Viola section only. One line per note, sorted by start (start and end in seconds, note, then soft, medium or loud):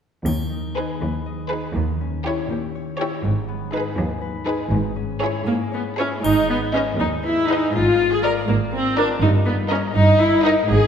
0.77 0.95 D#4 soft
1.52 1.70 D#4 soft
2.27 2.45 E4 soft
3.01 3.19 E4 soft
3.74 3.92 D#4 soft
4.48 4.66 D#4 soft
5.22 5.41 E4 soft
5.47 5.55 A#3 medium
5.74 5.82 B3 soft
5.99 6.07 C#4 medium
5.99 6.18 E4 soft
6.24 6.49 D#4 medium
6.50 6.58 B3 soft
6.74 6.82 C#4 soft
7.00 7.08 D#4 medium
7.24 7.49 E4 medium
7.50 7.74 D#4 medium
7.75 8.11 F4 medium
8.12 8.24 G#4 medium
8.23 8.31 A#4 medium
8.48 8.56 A#3 soft
8.73 8.97 C4 medium
8.98 9.06 D4 medium
9.22 9.30 D#4 medium
9.47 9.55 B3 soft
9.71 9.79 C#4 soft
9.95 10.19 D#4 medium
10.19 10.44 E4 medium
10.44 10.52 D#4 medium
10.69 10.87 G#4 medium